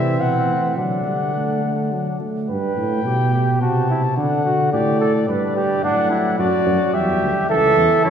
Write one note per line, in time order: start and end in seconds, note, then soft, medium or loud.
0.00 0.19 C3 medium
0.00 0.78 E3 medium
0.00 0.77 C4 medium
0.00 0.22 E5 medium
0.20 0.47 B2 medium
0.20 0.76 F#5 medium
0.48 0.76 A2 medium
0.77 2.18 D3 medium
0.77 1.05 F#3 medium
0.77 2.18 D4 medium
0.77 2.18 F#5 medium
1.06 1.34 G3 medium
1.35 1.63 A3 medium
1.64 1.94 A3 medium
1.93 2.21 F#3 medium
2.21 2.49 A3 medium
2.49 2.75 G2 medium
2.49 3.01 B4 medium
2.49 3.57 G5 medium
2.77 3.04 A2 medium
3.04 3.60 B2 medium
3.04 3.33 G4 medium
3.34 3.61 G4 medium
3.61 4.16 C3 medium
3.61 3.89 F#4 medium
3.61 4.16 A5 medium
3.90 4.02 E4 medium
4.16 4.72 D3 medium
4.16 4.45 D4 medium
4.16 4.71 F#5 medium
4.45 4.72 F#4 medium
4.72 5.27 A2 loud
4.72 5.00 G4 medium
4.72 5.27 D5 medium
5.00 5.13 A4 medium
5.28 5.83 G2 medium
5.28 5.55 B4 medium
5.28 5.85 D5 medium
5.56 5.83 G4 medium
5.83 6.38 A2 medium
5.83 6.96 F#3 medium
5.83 6.10 D4 loud
5.83 6.38 F#5 medium
6.11 6.38 E4 medium
6.38 6.51 F#2 medium
6.38 6.93 F#4 medium
6.38 6.95 D5 medium
6.66 6.78 F#2 medium
6.94 7.21 E2 medium
6.94 7.49 G3 medium
6.94 7.48 G4 medium
6.94 7.48 E5 medium
7.22 7.34 D2 medium
7.49 7.76 C#2 medium
7.49 8.10 E3 medium
7.49 8.04 A4 loud
7.49 8.03 E5 loud
7.77 7.89 E2 medium
8.05 8.10 F#2 medium
8.05 8.10 E4 loud
8.05 8.10 C#5 loud